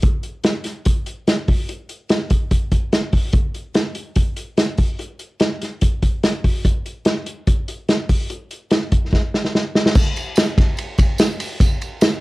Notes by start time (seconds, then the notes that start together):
0.02 kick, closed hi-hat
0.23 closed hi-hat
0.44 snare, closed hi-hat
0.64 snare, closed hi-hat
0.85 kick, closed hi-hat
1.06 closed hi-hat
1.27 snare, closed hi-hat
1.48 kick, open hi-hat
1.69 closed hi-hat
1.89 closed hi-hat
2.09 snare, closed hi-hat
2.30 kick, closed hi-hat
2.51 kick, closed hi-hat
2.72 kick, closed hi-hat
2.93 snare, closed hi-hat
3.13 kick, open hi-hat
3.33 kick, closed hi-hat
3.54 closed hi-hat
3.74 snare, closed hi-hat
3.95 closed hi-hat
4.16 kick, closed hi-hat
4.36 closed hi-hat
4.57 snare, closed hi-hat
4.77 kick, open hi-hat
4.99 closed hi-hat
5.19 closed hi-hat
5.40 snare, closed hi-hat
5.61 snare, closed hi-hat
5.81 kick, closed hi-hat
6.02 kick, closed hi-hat
6.23 snare, closed hi-hat
6.44 kick, open hi-hat
6.65 kick, closed hi-hat
6.86 closed hi-hat
7.05 snare, closed hi-hat
7.26 closed hi-hat
7.47 kick, closed hi-hat
7.68 closed hi-hat
7.88 snare, closed hi-hat
8.09 kick, open hi-hat
8.30 closed hi-hat
8.51 closed hi-hat
8.70 snare, closed hi-hat
8.92 kick, closed hi-hat
9.13 kick, snare
9.34 snare
9.45 snare
9.55 snare
9.75 snare
9.86 snare
9.95 kick, crash, tambourine
10.16 ride, tambourine
10.36 snare, ride, tambourine
10.58 kick, snare, ride
10.77 ride, tambourine
10.98 kick, ride, tambourine
11.18 snare, ride, tambourine
11.40 open hi-hat, ride, tambourine
11.60 kick, hi-hat pedal, ride, tambourine
11.81 ride, tambourine
12.01 snare, ride, tambourine